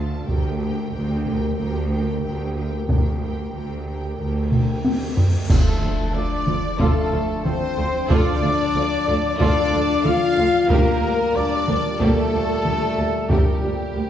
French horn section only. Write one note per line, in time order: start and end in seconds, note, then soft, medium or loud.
0.00 0.24 A3 soft
0.00 0.24 F4 soft
0.29 5.18 A#3 medium
0.29 5.14 G4 medium
5.50 6.11 A3 medium
6.16 6.81 D4 medium
6.80 7.45 A3 loud
7.44 8.10 C4 loud
8.09 9.37 D4 loud
9.38 10.03 D4 loud
10.05 10.70 F4 loud
10.69 11.34 A#3 loud
11.36 12.01 D4 loud
12.00 13.30 A3 loud
13.29 14.10 G3 medium